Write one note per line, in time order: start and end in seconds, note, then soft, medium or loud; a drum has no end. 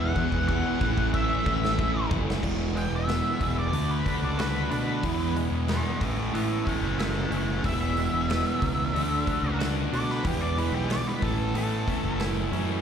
0.00 0.12 E2 loud
0.00 0.15 E2 loud
0.00 0.16 B2 loud
0.00 0.14 E3 loud
0.00 0.80 E3 medium
0.00 0.15 G#3 loud
0.00 0.16 B3 loud
0.00 0.16 E4 loud
0.00 0.80 E4 medium
0.00 0.80 G#4 medium
0.00 0.47 F#5 medium
0.00 0.77 F#5 medium
0.15 0.31 E2 loud
0.15 0.48 E2 medium
0.15 0.48 B2 medium
0.15 0.47 E3 medium
0.15 0.48 G#3 medium
0.15 0.48 B3 loud
0.15 0.48 E4 loud
0.15 kick medium
0.32 0.61 E2 medium
0.32 kick medium
0.48 0.79 E2 loud
0.48 0.79 B2 medium
0.48 0.79 E3 loud
0.48 0.79 G#3 medium
0.48 0.79 B3 loud
0.48 0.80 E4 loud
0.48 1.10 F#5 loud
0.48 kick medium
0.80 1.39 A1 medium
0.80 1.12 A2 medium
0.80 1.12 E3 loud
0.80 2.42 A3 medium
0.80 1.12 A3 medium
0.80 1.13 C#4 medium
0.80 1.13 E4 loud
0.80 2.42 A4 medium
0.80 2.42 C#5 medium
0.80 2.42 E5 medium
0.80 kick medium
0.98 kick medium
1.13 1.44 A2 loud
1.13 1.45 E3 loud
1.13 1.45 A3 loud
1.13 1.45 C#4 loud
1.13 1.46 E4 loud
1.13 2.07 E5 medium
1.13 kick medium
1.45 2.04 A1 medium
1.45 1.78 A2 medium
1.45 1.77 E3 medium
1.45 1.78 A3 medium
1.45 1.79 C#4 medium
1.45 1.79 E4 medium
1.45 kick loud
1.65 snare medium
1.78 2.10 A2 medium
1.78 2.11 E3 medium
1.78 2.11 A3 medium
1.78 2.11 C#4 medium
1.78 2.11 E4 loud
1.78 kick loud
2.11 2.40 F#1 loud
2.11 2.42 A2 medium
2.11 2.42 E3 medium
2.11 2.42 A3 medium
2.11 2.42 C#4 medium
2.11 2.43 E4 medium
2.11 kick loud
2.30 snare loud
2.42 2.86 E1 medium
2.42 2.73 E2 medium
2.42 2.74 B2 loud
2.42 2.74 E3 medium
2.42 2.75 G#3 medium
2.42 2.75 B3 medium
2.42 2.75 E4 medium
2.42 kick loud
2.42 crash loud
2.74 3.06 E2 medium
2.74 3.07 B2 medium
2.74 3.06 E3 medium
2.74 3.06 G#3 medium
2.74 3.07 B3 medium
2.74 3.07 E4 medium
2.74 2.93 G5 medium
2.74 open hi-hat soft
2.91 3.20 E1 medium
2.96 3.57 E5 medium
3.07 3.40 E2 medium
3.07 3.39 B2 medium
3.07 3.38 E3 medium
3.07 3.39 G#3 loud
3.07 3.40 B3 loud
3.07 3.40 E4 loud
3.07 snare loud
3.07 open hi-hat medium
3.40 3.70 E1 medium
3.40 3.72 E2 medium
3.40 3.72 B2 medium
3.40 3.71 E3 medium
3.40 3.71 G#3 medium
3.40 3.72 B3 medium
3.40 3.72 E4 medium
3.40 kick medium
3.40 open hi-hat medium
3.59 3.90 D5 medium
3.72 4.02 D2 medium
3.72 4.04 D3 medium
3.72 4.04 A3 medium
3.72 4.04 D4 loud
3.72 4.05 F#4 medium
3.72 open hi-hat medium
3.91 4.22 B4 medium
4.05 4.37 D3 medium
4.05 4.37 A3 medium
4.05 4.37 D4 medium
4.05 4.37 F#4 medium
4.05 kick medium
4.05 open hi-hat medium
4.22 4.66 C#2 medium
4.22 4.39 D5 medium
4.38 4.71 D3 medium
4.38 4.71 A3 medium
4.38 4.71 D4 loud
4.38 4.71 F#4 medium
4.38 4.70 B4 medium
4.38 snare loud
4.38 open hi-hat medium
4.71 5.00 B2 medium
4.71 5.02 D3 medium
4.71 5.02 A3 medium
4.71 5.03 D4 medium
4.71 5.03 F#4 medium
4.71 5.34 B4 medium
4.71 open hi-hat medium
5.03 5.47 E2 medium
5.03 5.34 E2 medium
5.03 5.35 B2 medium
5.03 5.35 E3 medium
5.03 5.35 G#3 loud
5.03 5.36 B3 medium
5.03 5.36 E4 loud
5.03 kick loud
5.03 open hi-hat medium
5.35 5.66 E2 medium
5.35 5.67 B2 medium
5.35 5.67 E3 medium
5.35 5.67 G#3 medium
5.35 5.68 B3 medium
5.35 5.69 E4 medium
5.35 open hi-hat medium
5.51 5.81 E2 medium
5.68 5.99 E2 medium
5.68 5.99 B2 loud
5.68 5.99 E3 medium
5.68 6.00 G#3 loud
5.68 6.00 B3 loud
5.68 6.00 E4 loud
5.68 6.02 G#4 medium
5.68 6.01 E5 medium
5.68 snare loud
5.68 open hi-hat medium
6.01 6.30 A1 medium
6.01 6.33 A2 medium
6.01 6.33 E3 medium
6.01 6.34 A3 medium
6.01 6.34 C#4 medium
6.01 6.34 E4 medium
6.01 6.32 C#5 medium
6.01 6.33 E5 medium
6.01 kick loud
6.01 open hi-hat medium
6.32 6.62 A2 medium
6.32 6.64 A2 medium
6.32 6.64 E3 medium
6.32 6.65 A3 medium
6.32 7.64 B3 medium
6.32 6.66 C#4 loud
6.32 6.66 E4 loud
6.32 6.65 C#5 medium
6.32 6.65 E5 medium
6.32 open hi-hat medium
6.65 6.98 A2 medium
6.65 6.99 E3 medium
6.65 6.99 A3 medium
6.65 6.99 C#4 medium
6.65 7.00 E4 medium
6.65 6.97 E5 medium
6.65 6.98 G5 medium
6.65 kick medium
6.65 open hi-hat medium
6.81 7.25 F#1 medium
6.99 7.29 A2 medium
6.99 7.30 E3 medium
6.99 7.31 A3 medium
6.99 7.31 C#4 medium
6.99 7.31 E4 loud
6.99 7.30 E5 medium
6.99 7.32 G5 medium
6.99 snare loud
6.99 open hi-hat medium
7.30 7.60 F#1 medium
7.30 7.62 A2 medium
7.30 7.62 E3 medium
7.30 7.63 A3 medium
7.30 7.63 C#4 medium
7.30 7.63 E4 medium
7.30 open hi-hat medium
7.34 7.63 E5 medium
7.34 7.65 G5 medium
7.63 8.08 E1 medium
7.63 7.96 E2 medium
7.63 7.97 B2 loud
7.63 7.95 E3 medium
7.63 7.95 G#3 loud
7.63 7.96 B3 loud
7.63 7.96 E4 loud
7.63 9.57 E5 loud
7.63 kick loud
7.63 open hi-hat medium
7.96 8.29 E2 medium
7.96 8.29 B2 medium
7.96 8.26 E3 medium
7.96 8.26 G#3 medium
7.96 8.27 B3 medium
7.96 8.27 E4 medium
7.96 open hi-hat soft
8.12 8.42 E1 medium
8.28 8.60 E2 medium
8.28 8.61 B2 medium
8.28 8.59 E3 loud
8.28 8.60 G#3 loud
8.28 8.60 B3 loud
8.28 8.61 E4 loud
8.28 snare loud
8.28 open hi-hat medium
8.60 8.91 C#2 medium
8.60 8.93 E2 medium
8.60 8.93 B2 medium
8.60 8.92 E3 medium
8.60 8.94 F#3 medium
8.60 8.92 G#3 medium
8.60 8.92 B3 medium
8.60 8.93 E4 medium
8.60 kick medium
8.60 open hi-hat medium
8.92 9.23 D2 medium
8.92 9.24 D3 medium
8.92 9.24 A3 medium
8.92 9.25 D4 medium
8.92 9.25 F#4 loud
8.96 open hi-hat medium
9.25 9.57 D3 medium
9.25 9.58 A3 medium
9.25 9.58 D4 medium
9.25 9.59 F#4 medium
9.25 kick medium
9.25 open hi-hat medium
9.42 9.86 C#2 medium
9.58 9.91 D3 medium
9.58 9.91 A3 medium
9.58 9.92 D4 loud
9.58 9.92 F#4 medium
9.58 snare loud
9.58 open hi-hat medium
9.92 10.21 B2 medium
9.92 10.23 D3 medium
9.92 10.23 A3 medium
9.92 10.23 D4 medium
9.92 10.23 F#4 medium
9.92 10.10 D5 loud
9.92 open hi-hat medium
10.10 10.26 B4 medium
10.10 snare soft
10.24 10.68 E2 medium
10.24 10.56 E2 medium
10.24 10.56 B2 medium
10.24 10.56 E3 medium
10.24 10.57 G#3 loud
10.24 10.57 B3 medium
10.24 10.57 E4 loud
10.24 10.42 G4 medium
10.24 kick loud
10.24 open hi-hat medium
10.41 10.57 D5 medium
10.57 10.90 E2 medium
10.57 10.90 B2 medium
10.57 10.88 E3 medium
10.57 10.88 G#3 medium
10.57 10.89 B3 medium
10.57 10.89 E4 medium
10.57 10.74 B4 loud
10.57 open hi-hat medium
10.71 11.01 B1 medium
10.71 10.90 G4 medium
10.89 11.21 E2 loud
10.89 11.21 B2 loud
10.89 11.20 E3 medium
10.89 11.20 G#3 loud
10.89 11.21 B3 loud
10.89 11.21 E4 loud
10.89 11.07 D5 loud
10.89 snare loud
10.89 open hi-hat medium
11.07 11.23 B4 medium
11.22 11.51 A1 medium
11.22 11.53 A2 medium
11.22 11.53 E3 medium
11.22 11.54 A3 loud
11.22 11.54 C#4 medium
11.22 11.55 E4 loud
11.22 11.54 A4 medium
11.22 kick loud
11.22 open hi-hat medium
11.54 11.83 A2 medium
11.54 11.85 A2 medium
11.54 11.85 E3 medium
11.54 11.86 A3 medium
11.54 12.81 B3 medium
11.54 11.87 C#4 loud
11.54 11.87 E4 loud
11.54 open hi-hat medium
11.58 12.20 A4 loud
11.87 12.19 A2 medium
11.87 12.19 E3 medium
11.87 12.19 A3 medium
11.87 12.20 C#4 medium
11.87 12.20 E4 medium
11.87 kick medium
11.87 open hi-hat medium
12.03 12.47 F#1 medium
12.20 12.51 A2 medium
12.20 12.51 E3 loud
12.20 12.52 A3 medium
12.20 12.52 C#4 medium
12.20 12.52 E4 medium
12.20 snare loud
12.20 open hi-hat medium
12.52 12.81 F#2 medium
12.52 12.81 A2 medium
12.52 12.81 E3 medium
12.52 12.81 A3 medium
12.52 12.81 C#4 medium
12.52 12.81 E4 medium
12.52 open hi-hat medium